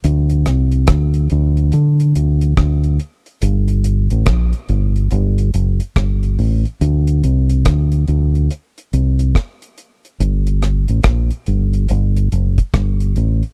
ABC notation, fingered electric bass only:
X:1
M:4/4
L:1/16
Q:"Swing 16ths" 1/4=71
K:Cdor
V:1 name="Fingered electric bass" clef=bass
D,,2 C,,2 D,,2 D,,2 D,2 D,,2 D,,2 z2 | G,,,3 A,,, B,,, z G,,,2 G,,,2 ^F,,, z G,,,2 A,,, z | D,,2 C,,2 D,,2 D,,2 z2 C,,2 z4 | G,,,3 A,,, B,,, z G,,,2 G,,,2 ^F,,, z G,,,2 A,,, z |]